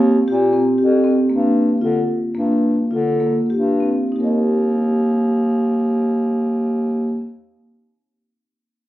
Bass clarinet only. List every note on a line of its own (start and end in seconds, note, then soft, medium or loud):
0.00 0.20 D#2 medium
0.28 0.69 A#2 medium
0.78 1.20 F2 medium
1.30 1.72 G2 medium
1.82 2.03 D3 medium
2.36 2.81 G2 medium
2.91 3.39 D3 medium
3.50 4.01 G2 medium
4.11 7.29 D#2 medium